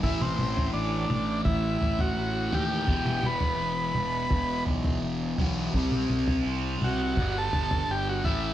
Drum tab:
T2 |-oo---o---------|-oo---o---------|-oo---o---------|
FT |o--o----o-oo--o-|o--o----o-oo--o-|o--o----o-oo--o-|
BD |o-------o-------|o-------o-------|o-------o-------|